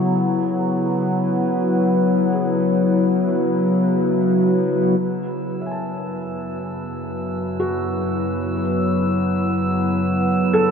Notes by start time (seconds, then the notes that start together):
Already playing: C#3 F#3 B3 E4 B4
2.33 G#4
3.28 C#5
4.99 F#2 F#3 E6
5.61 E5
5.66 G#5
5.71 A5
7.60 F#4
10.54 A4